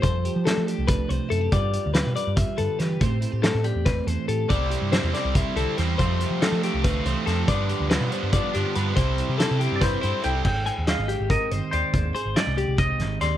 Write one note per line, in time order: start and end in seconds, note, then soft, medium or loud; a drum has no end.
0.00 0.28 F2 medium
0.00 1.49 F3 medium
0.00 0.45 G3 medium
0.00 0.66 A4 medium
0.00 0.45 C5 medium
0.00 kick medium
0.00 closed hi-hat medium
0.25 1.28 G4 medium
0.25 closed hi-hat medium
0.36 0.52 F3 medium
0.45 1.50 A3 medium
0.45 0.86 D4 medium
0.45 0.67 A4 medium
0.45 snare loud
0.45 closed hi-hat medium
0.57 0.73 F3 medium
0.67 0.88 G4 medium
0.67 1.08 A4 medium
0.67 closed hi-hat medium
0.78 1.03 C2 medium
0.87 1.49 D4 medium
0.87 1.09 B4 medium
0.87 kick loud
0.87 closed hi-hat medium
1.08 1.18 C2 medium
1.08 1.49 C3 medium
1.08 1.49 B4 medium
1.08 1.31 C5 medium
1.08 closed hi-hat medium
1.29 1.47 F#2 medium
1.29 1.41 E4 medium
1.29 1.52 A4 medium
1.29 closed hi-hat medium
1.41 1.52 G4 soft
1.52 3.00 G2 medium
1.52 1.77 G2 medium
1.52 1.94 G3 medium
1.52 1.94 F4 medium
1.52 1.73 G4 medium
1.52 2.16 B4 medium
1.52 1.93 D5 medium
1.52 kick loud
1.52 closed hi-hat medium
1.73 2.78 G4 medium
1.73 closed hi-hat medium
1.86 2.02 D2 medium
1.94 3.01 G3 medium
1.94 2.36 F4 medium
1.94 2.15 B4 medium
1.94 snare loud
1.94 closed hi-hat medium
2.07 2.14 B2 medium
2.16 2.56 B4 medium
2.16 2.36 D5 medium
2.16 closed hi-hat medium
2.27 2.43 G2 medium
2.36 2.99 F4 medium
2.36 2.58 E5 medium
2.36 kick loud
2.36 closed hi-hat medium
2.57 2.67 G2 medium
2.57 2.98 D3 medium
2.57 2.79 A4 medium
2.57 2.98 B4 medium
2.57 closed hi-hat medium
2.79 2.96 E3 medium
2.79 3.02 G4 medium
2.79 3.01 B4 medium
2.79 snare soft
2.79 closed hi-hat medium
3.01 4.48 A2 medium
3.01 3.26 A2 medium
3.01 3.42 A3 medium
3.01 3.43 C4 medium
3.01 3.21 G4 medium
3.01 3.43 C5 medium
3.01 3.64 C5 medium
3.01 kick loud
3.01 closed hi-hat medium
3.21 3.32 E4 medium
3.21 closed hi-hat medium
3.32 3.49 A2 medium
3.32 4.27 G4 soft
3.42 4.73 A3 medium
3.42 3.85 C4 medium
3.42 3.65 A4 medium
3.42 snare loud
3.42 closed hi-hat medium
3.55 3.71 A2 medium
3.64 3.86 G4 medium
3.64 4.07 D5 medium
3.64 closed hi-hat soft
3.75 4.00 E2 medium
3.85 4.92 C4 medium
3.85 4.07 B4 medium
3.85 kick loud
3.85 snare soft
3.85 closed hi-hat medium
4.06 4.16 E2 medium
4.06 4.47 E3 medium
4.06 4.49 A4 medium
4.06 4.28 C5 medium
4.06 closed hi-hat medium
4.28 4.45 A2 medium
4.28 4.52 G4 soft
4.28 4.50 A4 medium
4.28 closed hi-hat medium
4.48 4.75 C2 medium
4.48 5.34 C3 medium
4.48 4.91 C3 medium
4.48 4.93 G3 medium
4.48 4.94 C4 medium
4.48 5.13 A4 medium
4.48 4.92 D5 medium
4.48 kick medium
4.48 closed hi-hat medium
4.52 4.94 E4 medium
4.70 6.02 G4 medium
4.70 closed hi-hat medium
4.82 4.98 G2 medium
4.92 5.35 C3 medium
4.92 6.42 G3 medium
4.92 5.16 G3 medium
4.92 5.14 C4 medium
4.92 5.96 E4 medium
4.92 5.12 E4 medium
4.92 5.14 C5 medium
4.92 snare loud
4.92 closed hi-hat medium
5.04 5.12 E2 medium
5.13 5.58 G3 soft
5.13 5.56 C4 medium
5.13 5.55 E4 medium
5.13 5.96 A4 soft
5.13 5.35 D5 medium
5.13 snare soft
5.13 closed hi-hat medium
5.25 5.41 C2 medium
5.35 5.57 C3 medium
5.35 5.57 E5 medium
5.35 kick loud
5.35 closed hi-hat medium
5.56 5.65 C2 medium
5.56 5.78 D3 medium
5.56 5.78 G3 medium
5.56 5.78 C4 medium
5.56 5.79 E4 medium
5.56 5.77 A4 medium
5.56 closed hi-hat medium
5.77 5.95 E2 medium
5.77 5.97 C3 medium
5.77 5.99 E3 medium
5.77 5.99 G3 medium
5.77 5.99 C4 medium
5.77 5.99 E4 medium
5.77 5.97 C5 medium
5.77 snare soft
5.77 closed hi-hat medium
5.98 6.40 F2 medium
5.98 6.24 F2 medium
5.98 6.40 C3 medium
5.98 6.84 F3 medium
5.98 6.42 F3 medium
5.98 6.42 A3 medium
5.98 6.42 C4 medium
5.98 6.63 A4 soft
5.98 6.41 C5 medium
5.98 kick medium
5.98 closed hi-hat medium
6.20 7.70 G4 medium
6.20 closed hi-hat medium
6.31 6.47 F3 medium
6.41 6.84 F2 medium
6.41 6.84 C3 medium
6.41 6.64 F3 medium
6.41 7.46 A3 medium
6.41 6.63 A3 medium
6.41 6.61 C4 medium
6.41 7.91 D4 medium
6.41 6.63 A4 medium
6.41 snare loud
6.41 closed hi-hat medium
6.52 6.69 F3 medium
6.62 7.06 F3 medium
6.62 7.05 A3 medium
6.62 7.04 C4 medium
6.62 6.85 G4 medium
6.62 7.46 A4 medium
6.62 closed hi-hat medium
6.74 6.98 C2 medium
6.84 7.06 D3 medium
6.84 7.06 B4 medium
6.84 kick loud
6.84 closed hi-hat medium
7.05 7.14 C2 medium
7.05 7.27 E3 medium
7.05 7.26 F3 medium
7.05 7.27 A3 medium
7.05 7.28 C4 medium
7.05 7.27 C5 medium
7.05 closed hi-hat medium
7.26 7.43 F2 medium
7.26 7.47 C3 medium
7.26 7.47 F3 medium
7.26 7.49 F3 medium
7.26 7.48 A3 medium
7.26 7.48 C4 medium
7.26 7.48 A4 medium
7.26 snare soft
7.26 closed hi-hat medium
7.47 7.89 G2 medium
7.47 7.72 G2 medium
7.47 8.97 G2 medium
7.47 7.89 D3 medium
7.47 7.90 F3 medium
7.47 7.91 B3 loud
7.47 7.92 D4 medium
7.47 8.13 B4 medium
7.47 7.89 D5 medium
7.47 kick loud
7.47 closed hi-hat medium
7.69 8.78 G4 medium
7.69 closed hi-hat medium
7.80 7.97 D2 medium
7.90 8.33 G2 medium
7.90 8.33 D3 medium
7.90 8.13 F3 loud
7.90 9.39 G3 medium
7.90 8.11 B3 medium
7.90 8.10 D4 medium
7.90 8.34 F4 medium
7.90 8.11 B4 medium
7.90 snare loud
7.90 closed hi-hat medium
8.01 8.09 B2 medium
8.11 8.55 F3 medium
8.11 8.54 B3 medium
8.11 8.52 D4 medium
8.11 8.55 B4 medium
8.11 8.33 C5 medium
8.11 closed hi-hat medium
8.23 8.39 G2 medium
8.32 8.95 F4 medium
8.32 8.54 D5 medium
8.32 kick loud
8.32 closed hi-hat medium
8.53 8.63 G2 medium
8.53 8.95 D3 medium
8.53 8.75 F3 medium
8.53 8.76 B3 medium
8.53 8.76 D4 medium
8.53 8.76 G4 medium
8.53 8.95 B4 soft
8.53 closed hi-hat medium
8.75 8.92 G2 medium
8.75 8.94 D3 medium
8.75 8.96 F3 medium
8.75 8.96 B3 medium
8.75 8.97 D4 medium
8.75 9.02 G4 soft
8.75 8.95 B4 medium
8.75 closed hi-hat medium
8.95 9.21 C2 medium
8.95 9.37 C3 medium
8.95 10.04 C3 medium
8.95 9.37 G3 medium
8.95 9.39 C4 medium
8.95 9.39 E4 medium
8.95 9.38 C5 medium
8.95 kick loud
8.95 closed hi-hat medium
8.99 9.61 A4 medium
9.18 9.31 E4 soft
9.18 closed hi-hat medium
9.29 9.45 C3 medium
9.29 10.24 G4 soft
9.38 9.81 C3 medium
9.38 9.61 G3 medium
9.38 9.59 C4 medium
9.38 9.57 E4 medium
9.38 9.81 E4 medium
9.38 9.60 A4 medium
9.38 snare medium
9.38 closed hi-hat medium
9.51 9.67 C3 medium
9.59 10.03 G3 medium
9.59 10.02 C4 medium
9.59 10.00 E4 medium
9.59 9.81 G4 medium
9.59 10.03 A4 soft
9.59 closed hi-hat medium
9.72 9.96 G2 medium
9.72 9.82 D5 medium
9.81 10.23 E4 medium
9.81 10.01 B4 medium
9.81 10.26 C5 medium
9.81 kick loud
9.81 snare soft
9.81 closed hi-hat medium
10.01 10.45 G2 soft
10.01 10.12 G2 medium
10.01 10.21 G3 soft
10.01 10.23 C4 soft
10.01 10.24 E4 medium
10.01 10.43 A4 soft
10.01 10.24 C5 medium
10.01 closed hi-hat medium
10.22 10.41 C2 medium
10.22 10.43 C3 medium
10.22 10.43 G3 medium
10.22 10.44 C4 medium
10.22 10.35 E4 medium
10.22 10.45 E4 medium
10.22 10.45 A4 medium
10.22 10.44 G5 medium
10.22 closed hi-hat medium
10.35 10.46 G4 soft
10.45 10.70 G#1 medium
10.45 11.92 G#2 medium
10.45 10.66 G#4 medium
10.45 10.88 G5 medium
10.45 kick medium
10.45 crash medium
10.66 11.92 G#4 medium
10.66 10.87 G#5 medium
10.66 closed hi-hat soft
10.78 10.94 D#2 soft
10.87 11.91 G#3 medium
10.87 11.09 D#5 medium
10.87 11.30 F5 medium
10.87 snare medium
10.87 closed hi-hat medium
10.98 11.15 G#1 medium
11.08 11.30 G4 medium
11.08 11.72 G4 medium
11.08 closed hi-hat soft
11.20 11.36 G#1 medium
11.30 12.79 C4 medium
11.30 11.52 A#4 medium
11.30 11.74 D#5 medium
11.30 kick loud
11.30 closed hi-hat medium
11.51 11.60 G1 medium
11.51 11.92 D#3 soft
11.51 11.72 C5 medium
11.51 closed hi-hat medium
11.71 11.81 D#2 medium
11.71 11.92 G4 medium
11.71 12.38 C5 medium
11.71 12.15 D5 medium
11.71 closed hi-hat medium
11.94 12.10 D#2 medium
11.94 13.37 G#2 medium
11.94 kick medium
11.94 closed hi-hat medium
12.15 13.37 G#4 medium
12.15 12.36 C5 medium
12.15 closed hi-hat medium
12.25 12.34 G#1 medium
12.36 13.37 G#3 medium
12.36 12.78 D5 medium
12.36 12.58 D#5 medium
12.36 snare loud
12.36 closed hi-hat medium
12.47 12.63 C2 medium
12.58 12.79 G4 medium
12.58 13.20 G4 medium
12.58 closed hi-hat soft
12.68 13.01 C2 medium
12.78 13.37 C4 medium
12.78 13.21 D#5 medium
12.78 13.18 D#5 medium
12.78 kick loud
12.78 closed hi-hat medium
12.99 13.16 G#1 medium
12.99 13.37 D#3 medium
12.99 snare soft
12.99 closed hi-hat medium
13.21 13.37 D#2 medium
13.21 13.37 G4 soft
13.21 13.37 D5 medium
13.21 13.37 C6 medium
13.21 snare soft
13.21 closed hi-hat medium